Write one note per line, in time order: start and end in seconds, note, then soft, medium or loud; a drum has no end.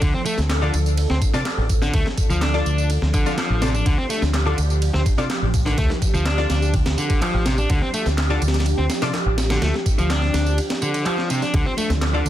0.00 0.11 D2 loud
0.00 0.13 D3 medium
0.00 12.29 F3 medium
0.00 12.29 D4 medium
0.00 3.85 A4 medium
0.00 kick loud
0.00 ride medium
0.00 tambourine soft
0.14 0.20 C4 loud
0.26 0.37 A3 medium
0.26 ride medium
0.26 tambourine medium
0.38 0.69 D2 medium
0.38 snare medium
0.38 tambourine soft
0.50 snare loud
0.50 clap loud
0.50 ride medium
0.50 tambourine soft
0.62 0.73 D3 medium
0.62 0.71 D4 medium
0.62 0.71 F4 medium
0.62 0.71 A4 medium
0.62 0.71 D5 loud
0.74 1.05 D2 medium
0.74 ride medium
0.74 tambourine medium
0.86 tambourine soft
0.97 ride medium
0.97 tambourine soft
1.10 1.19 D2 medium
1.10 1.16 C4 loud
1.10 snare medium
1.22 kick loud
1.22 ride medium
1.22 tambourine medium
1.34 1.40 C3 loud
1.34 1.43 D4 loud
1.34 1.43 F4 medium
1.34 1.43 A4 medium
1.34 1.43 D5 loud
1.34 snare medium
1.34 tambourine soft
1.45 snare loud
1.45 clap loud
1.45 ride medium
1.45 tambourine soft
1.58 1.89 A1 loud
1.69 kick medium
1.69 ride medium
1.69 tambourine medium
1.82 1.93 D3 medium
1.82 snare medium
1.82 tambourine soft
1.94 2.03 D2 loud
1.94 2.05 A3 medium
1.94 kick loud
1.94 ride medium
1.94 tambourine soft
2.06 snare medium
2.18 kick medium
2.18 ride medium
2.18 tambourine medium
2.30 2.61 D2 medium
2.30 2.41 F3 loud
2.30 tambourine soft
2.42 2.89 D4 loud
2.42 snare loud
2.42 clap loud
2.42 ride medium
2.42 tambourine soft
2.54 2.68 D4 loud
2.54 2.68 F4 medium
2.54 2.68 A4 medium
2.54 2.68 D5 loud
2.54 snare soft
2.66 2.97 D2 medium
2.66 tambourine medium
2.78 tambourine soft
2.90 ride medium
2.90 tambourine soft
3.02 3.11 D2 medium
3.02 snare soft
3.14 3.37 D3 medium
3.14 kick medium
3.14 ride medium
3.14 tambourine medium
3.26 3.35 D4 medium
3.26 3.35 F4 medium
3.26 3.35 A4 medium
3.26 3.35 F5 loud
3.26 snare soft
3.26 tambourine soft
3.38 3.61 F3 medium
3.38 snare loud
3.38 clap loud
3.38 ride medium
3.38 tambourine soft
3.50 3.81 A1 loud
3.62 3.73 C3 medium
3.62 3.71 D4 medium
3.62 3.71 F4 medium
3.62 3.71 A4 medium
3.62 3.71 D5 medium
3.62 snare loud
3.62 ride medium
3.62 tambourine medium
3.74 3.85 D4 medium
3.74 tambourine soft
3.86 3.95 D2 loud
3.86 3.97 D3 medium
3.86 11.53 G4 medium
3.86 kick loud
3.86 ride medium
3.86 tambourine soft
3.98 4.04 C4 loud
4.10 4.22 A3 medium
4.10 ride medium
4.10 tambourine medium
4.22 4.53 D2 medium
4.22 snare medium
4.22 tambourine soft
4.34 snare loud
4.34 clap loud
4.34 ride medium
4.34 tambourine soft
4.46 4.57 D3 medium
4.46 4.55 D4 medium
4.46 4.55 F4 medium
4.46 4.55 A4 medium
4.46 4.55 D5 loud
4.58 4.89 D2 medium
4.58 ride medium
4.58 tambourine medium
4.70 tambourine soft
4.82 ride medium
4.82 tambourine soft
4.94 5.03 D2 medium
4.94 5.00 C4 loud
4.94 snare medium
5.06 kick loud
5.06 ride medium
5.06 tambourine medium
5.18 5.24 C3 loud
5.18 5.27 D4 loud
5.18 5.27 F4 medium
5.18 5.27 A4 medium
5.18 5.27 D5 loud
5.18 snare medium
5.18 tambourine soft
5.30 snare loud
5.30 clap loud
5.30 ride medium
5.30 tambourine soft
5.42 5.73 A1 loud
5.54 kick loud
5.54 ride medium
5.54 tambourine medium
5.66 5.77 D3 medium
5.66 snare medium
5.66 tambourine soft
5.78 5.87 D2 loud
5.78 5.90 A3 medium
5.78 kick loud
5.78 ride medium
5.78 tambourine soft
5.90 snare medium
6.02 kick medium
6.02 ride medium
6.02 tambourine medium
6.14 6.45 D2 medium
6.14 6.25 F3 loud
6.14 tambourine soft
6.26 6.73 D4 loud
6.26 snare loud
6.26 clap loud
6.26 ride medium
6.26 tambourine soft
6.38 6.52 D4 loud
6.38 6.52 F4 medium
6.38 6.52 A4 medium
6.38 6.52 D5 loud
6.38 snare soft
6.50 6.81 D2 medium
6.50 snare loud
6.50 ride medium
6.50 tambourine medium
6.62 tambourine soft
6.74 kick loud
6.74 ride medium
6.74 tambourine soft
6.86 6.95 D2 medium
6.86 snare loud
6.86 ride medium
6.98 7.21 D3 medium
6.98 tambourine medium
7.10 kick loud
7.10 ride medium
7.10 tambourine soft
7.22 7.45 F3 medium
7.22 clap loud
7.22 ride medium
7.22 tambourine soft
7.34 7.65 A1 medium
7.46 7.57 C3 medium
7.46 snare loud
7.46 ride medium
7.46 tambourine medium
7.58 7.69 D4 medium
7.58 tambourine soft
7.70 7.79 D2 loud
7.70 7.81 D3 medium
7.70 kick loud
7.70 ride medium
7.70 tambourine soft
7.82 7.88 C4 loud
7.94 8.06 A3 medium
7.94 ride medium
7.94 tambourine medium
8.06 8.37 D2 medium
8.06 snare medium
8.06 tambourine soft
8.18 snare loud
8.18 clap loud
8.18 ride medium
8.18 tambourine soft
8.30 8.41 D3 medium
8.30 8.39 D4 medium
8.30 8.39 F4 medium
8.30 8.39 A4 medium
8.30 8.39 D5 loud
8.42 8.73 D2 medium
8.42 ride medium
8.42 tambourine medium
8.48 snare medium
8.48 ride medium
8.54 snare medium
8.54 ride medium
8.54 tambourine soft
8.60 snare medium
8.60 ride medium
8.66 ride medium
8.66 tambourine soft
8.78 8.87 D2 medium
8.78 8.84 C4 loud
8.90 snare loud
8.90 ride medium
8.90 tambourine medium
9.02 9.08 C3 loud
9.02 9.11 D4 loud
9.02 9.11 F4 medium
9.02 9.11 A4 medium
9.02 9.11 D5 loud
9.02 snare loud
9.02 ride medium
9.02 tambourine soft
9.14 snare loud
9.14 clap loud
9.14 ride medium
9.14 tambourine soft
9.26 9.57 A1 loud
9.38 snare loud
9.38 ride medium
9.38 tambourine medium
9.50 9.61 D3 medium
9.50 snare loud
9.50 ride medium
9.50 tambourine soft
9.62 9.71 D2 loud
9.62 9.74 A3 medium
9.62 snare loud
9.62 ride medium
9.62 tambourine soft
9.74 snare medium
9.86 kick medium
9.86 ride medium
9.86 tambourine medium
9.98 10.29 D2 medium
9.98 10.09 F3 loud
9.98 tambourine soft
10.10 10.57 D4 loud
10.10 snare loud
10.10 clap loud
10.10 ride medium
10.10 tambourine soft
10.22 snare soft
10.34 10.58 D2 medium
10.34 snare loud
10.34 ride medium
10.34 tambourine medium
10.46 tambourine soft
10.58 ride medium
10.58 tambourine soft
10.70 snare loud
10.70 ride medium
10.82 11.05 D3 medium
10.82 tambourine medium
10.94 ride medium
10.94 tambourine soft
11.06 11.29 F3 medium
11.06 clap loud
11.06 ride medium
11.06 tambourine soft
11.18 snare soft
11.30 11.41 C3 medium
11.30 ride medium
11.30 tambourine medium
11.42 11.53 D4 medium
11.42 snare soft
11.42 tambourine soft
11.54 11.63 D2 loud
11.54 11.65 D3 medium
11.54 12.29 A4 medium
11.54 kick loud
11.54 ride medium
11.54 tambourine soft
11.54 high bongo medium
11.66 11.72 C4 loud
11.78 11.89 A3 medium
11.78 ride medium
11.78 tambourine medium
11.78 high conga medium
11.90 12.21 D2 medium
11.90 snare soft
11.90 tambourine soft
11.90 low conga medium
12.02 snare loud
12.02 clap loud
12.02 ride medium
12.02 tambourine soft
12.14 12.25 D3 medium
12.14 12.23 D4 medium
12.14 12.23 F4 medium
12.14 12.23 A4 medium
12.14 12.23 D5 loud
12.25 12.29 D2 medium
12.25 ride medium
12.25 tambourine medium